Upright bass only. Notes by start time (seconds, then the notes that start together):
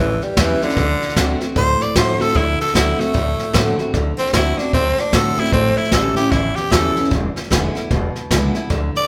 Already playing: A1
0.22 muted upright bass stroke
0.37 E2
0.62 muted upright bass stroke
0.77 D2
1.02 muted upright bass stroke
1.17 D2
1.42 muted upright bass stroke
1.56 D2
1.80 muted upright bass stroke
1.96 A2
2.21 muted upright bass stroke
2.36 D2
2.60 muted upright bass stroke
2.75 D2
3.01 muted upright bass stroke
3.15 D2
3.39 muted upright bass stroke
3.54 A2
3.80 muted upright bass stroke
3.94 D2
4.19 muted upright bass stroke
4.34 D2
4.58 muted upright bass stroke
4.74 D2
4.98 muted upright bass stroke
5.13 A2
5.38 muted upright bass stroke
5.52 A1
5.77 muted upright bass stroke
5.92 A1
6.17 muted upright bass stroke
6.32 A1
6.56 muted upright bass stroke
6.72 E2
6.96 muted upright bass stroke
7.12 E1
7.36 muted upright bass stroke
7.51 E1
7.76 muted upright bass stroke
7.91 E1
8.16 muted upright bass stroke
8.31 C#2
8.56 muted upright bass stroke
8.70 D2
8.96 muted upright bass stroke